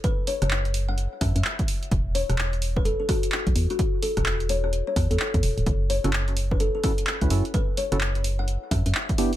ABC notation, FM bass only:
X:1
M:4/4
L:1/16
Q:"Swing 16ths" 1/4=128
K:F#m
V:1 name="FM bass" clef=bass
z3 F,,,6 z F,, F,, z4 | E,,,3 E,,,6 z4 B,,, E,, z | z3 E,,,6 z E,, E,, z E,, E,,, D,,, | F,,,3 F,,,6 z4 C,, F,, z |
z3 F,,,6 z F,, F,, z4 |]